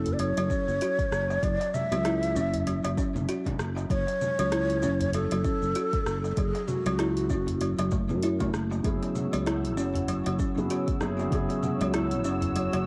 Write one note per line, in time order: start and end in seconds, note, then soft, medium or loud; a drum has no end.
0.00 0.31 F#1 medium
0.00 0.14 A4 medium
0.06 closed hi-hat soft
0.06 darbuka ka soft
0.06 darbuka dum medium
0.06 shaker soft
0.13 0.21 D5 medium
0.19 0.35 F#3 medium
0.19 1.45 C#5 loud
0.19 closed hi-hat medium
0.19 shaker soft
0.37 0.47 F#1 medium
0.37 0.50 F#3 loud
0.37 closed hi-hat soft
0.50 0.67 C#4 medium
0.50 kick loud
0.50 shaker medium
0.68 0.78 F#1 medium
0.68 shaker soft
0.81 1.42 F#4 medium
0.81 closed hi-hat medium
0.81 shaker soft
0.99 kick loud
0.99 closed hi-hat soft
0.99 shaker soft
1.12 1.37 F#1 medium
1.12 cross-stick medium
1.12 shaker medium
1.30 darbuka tek medium
1.30 shaker soft
1.43 1.57 F#1 medium
1.43 1.90 F#3 medium
1.43 1.76 D5 loud
1.43 kick loud
1.43 closed hi-hat medium
1.43 shaker soft
1.60 closed hi-hat soft
1.60 darbuka tek medium
1.60 shaker soft
1.74 2.97 E5 loud
1.74 low conga medium
1.74 shaker medium
1.92 2.37 C#2 medium
1.92 1.99 F#3 loud
1.92 closed hi-hat soft
1.92 shaker soft
2.04 2.35 E4 medium
2.04 cross-stick medium
2.04 closed hi-hat medium
2.04 darbuka ka medium
2.04 shaker soft
2.23 closed hi-hat soft
2.23 shaker soft
2.35 2.78 F#1 medium
2.35 2.46 C#4 medium
2.35 darbuka tek medium
2.35 shaker medium
2.53 closed hi-hat soft
2.53 darbuka ka soft
2.53 darbuka dum medium
2.53 shaker soft
2.67 2.83 F#3 medium
2.67 closed hi-hat medium
2.67 shaker soft
2.84 2.95 F#1 medium
2.84 2.97 F#3 loud
2.84 closed hi-hat soft
2.84 darbuka tek medium
2.97 3.15 C#4 medium
2.97 kick loud
2.97 darbuka tek medium
2.97 shaker medium
3.15 3.25 F#1 medium
3.15 low conga medium
3.15 shaker soft
3.29 3.89 F#4 medium
3.29 closed hi-hat medium
3.29 shaker soft
3.46 kick medium
3.46 closed hi-hat soft
3.46 darbuka ka medium
3.46 low conga medium
3.46 shaker soft
3.59 3.85 F#1 medium
3.59 cross-stick medium
3.59 shaker medium
3.76 darbuka tek medium
3.76 shaker soft
3.90 4.04 F#1 loud
3.90 4.37 F#3 medium
3.90 5.10 C#5 loud
3.90 kick loud
3.90 closed hi-hat medium
3.90 shaker soft
4.07 closed hi-hat soft
4.07 darbuka tek medium
4.07 shaker soft
4.21 low conga medium
4.21 shaker medium
4.39 4.85 C#2 medium
4.39 4.46 F#3 loud
4.39 closed hi-hat soft
4.39 shaker soft
4.52 4.82 E4 medium
4.52 cross-stick medium
4.52 closed hi-hat medium
4.52 darbuka ka soft
4.52 shaker soft
4.70 closed hi-hat soft
4.70 shaker soft
4.83 5.26 F#1 medium
4.83 4.93 C#4 medium
4.83 darbuka tek medium
4.83 shaker medium
4.99 closed hi-hat soft
4.99 darbuka ka soft
4.99 darbuka dum loud
4.99 shaker soft
5.13 5.30 F#3 medium
5.13 6.31 A4 loud
5.13 closed hi-hat medium
5.13 shaker soft
5.31 5.42 F#1 medium
5.31 5.44 F#3 medium
5.31 closed hi-hat soft
5.45 5.62 C#4 medium
5.45 kick loud
5.45 shaker medium
5.62 5.73 F#1 medium
5.62 shaker soft
5.75 6.36 F#4 medium
5.75 closed hi-hat medium
5.75 shaker soft
5.93 kick loud
5.93 closed hi-hat soft
5.93 shaker soft
6.06 6.32 F#1 medium
6.06 cross-stick medium
6.06 shaker medium
6.24 darbuka tek medium
6.24 shaker soft
6.31 6.38 A4 medium
6.37 6.51 F#1 medium
6.37 6.85 F#3 medium
6.37 6.69 G#4 loud
6.37 kick loud
6.37 closed hi-hat medium
6.37 shaker soft
6.55 closed hi-hat soft
6.55 darbuka tek medium
6.55 shaker soft
6.68 7.92 F#4 medium
6.68 low conga medium
6.68 shaker medium
6.86 7.32 C#2 medium
6.86 6.94 F#3 loud
6.86 closed hi-hat soft
6.86 shaker soft
6.98 7.29 E4 medium
6.98 cross-stick medium
6.98 closed hi-hat medium
6.98 darbuka ka soft
6.98 shaker soft
7.17 closed hi-hat soft
7.17 shaker soft
7.30 7.73 F#1 medium
7.30 7.40 C#4 medium
7.30 kick medium
7.30 darbuka tek medium
7.30 shaker medium
7.47 closed hi-hat soft
7.47 darbuka ka soft
7.47 darbuka dum medium
7.47 shaker soft
7.61 7.77 F#3 medium
7.61 closed hi-hat medium
7.61 shaker soft
7.79 8.12 F#1 medium
7.79 7.91 F#3 loud
7.79 closed hi-hat soft
7.79 darbuka tek medium
7.79 shaker soft
7.92 8.08 A3 medium
7.92 kick loud
7.92 darbuka tek medium
7.92 shaker medium
8.09 8.50 F#2 loud
8.09 low conga medium
8.09 shaker soft
8.23 8.39 E4 medium
8.23 closed hi-hat medium
8.23 shaker soft
8.40 8.53 A3 loud
8.40 kick medium
8.40 closed hi-hat soft
8.40 darbuka ka medium
8.40 low conga medium
8.40 shaker soft
8.54 8.80 F#1 loud
8.54 cross-stick medium
8.54 shaker medium
8.71 darbuka tek medium
8.71 shaker soft
8.83 10.52 C#3 medium
8.83 10.52 F#3 medium
8.83 9.32 F#3 medium
8.83 10.53 B3 medium
8.83 10.53 E4 medium
8.83 12.86 F#4 medium
8.83 10.54 G#4 medium
8.83 12.86 C#5 medium
8.83 12.86 E6 medium
8.83 kick loud
8.83 closed hi-hat medium
8.83 shaker soft
9.03 closed hi-hat soft
9.03 darbuka tek medium
9.03 shaker soft
9.15 low conga medium
9.15 shaker medium
9.33 9.78 C#2 medium
9.33 9.41 F#3 loud
9.33 closed hi-hat soft
9.33 shaker soft
9.46 9.76 E4 medium
9.46 cross-stick medium
9.46 closed hi-hat medium
9.46 darbuka ka soft
9.46 shaker soft
9.65 closed hi-hat soft
9.65 shaker soft
9.77 10.20 F#1 medium
9.77 9.88 C#4 medium
9.77 darbuka tek medium
9.77 shaker medium
9.94 closed hi-hat soft
9.94 darbuka ka soft
9.94 darbuka dum loud
9.94 shaker soft
10.08 10.24 F#3 medium
10.08 closed hi-hat medium
10.08 shaker soft
10.26 10.37 F#1 medium
10.26 10.39 F#3 medium
10.26 closed hi-hat soft
10.39 10.56 C#4 medium
10.39 kick loud
10.39 shaker medium
10.56 10.68 F#1 loud
10.56 10.98 C#3 medium
10.56 10.98 F#3 medium
10.56 10.98 B3 medium
10.56 10.99 E4 medium
10.56 10.99 G#4 medium
10.56 shaker soft
10.70 11.31 F#4 medium
10.70 closed hi-hat medium
10.70 shaker soft
10.88 kick loud
10.88 closed hi-hat soft
10.88 shaker soft
11.00 11.27 F#1 medium
11.00 11.29 C#3 medium
11.00 11.29 F#3 medium
11.00 11.29 B3 medium
11.00 11.29 E4 medium
11.00 11.30 G#4 loud
11.00 cross-stick medium
11.00 shaker medium
11.19 darbuka tek medium
11.19 shaker soft
11.30 11.46 F#1 medium
11.30 12.86 C#3 medium
11.30 12.86 F#3 medium
11.30 11.79 F#3 medium
11.30 12.86 B3 medium
11.30 12.86 E4 medium
11.30 kick loud
11.30 closed hi-hat medium
11.30 shaker soft
11.35 12.86 G#4 loud
11.49 closed hi-hat soft
11.49 darbuka tek medium
11.49 shaker soft
11.63 low conga medium
11.63 shaker medium
11.81 12.25 C#2 medium
11.81 11.89 F#3 loud
11.81 closed hi-hat soft
11.81 shaker soft
11.94 12.24 E4 medium
11.94 cross-stick medium
11.94 closed hi-hat medium
11.94 darbuka ka soft
11.94 shaker soft
12.11 closed hi-hat soft
12.11 shaker soft
12.24 12.68 F#1 medium
12.24 12.35 C#4 medium
12.24 darbuka tek medium
12.24 shaker medium
12.42 closed hi-hat soft
12.42 darbuka ka soft
12.42 darbuka dum medium
12.42 shaker soft
12.56 12.72 F#3 medium
12.56 closed hi-hat medium
12.56 shaker soft
12.73 12.84 F#1 medium
12.73 12.86 F#3 loud
12.73 closed hi-hat soft
12.73 darbuka tek medium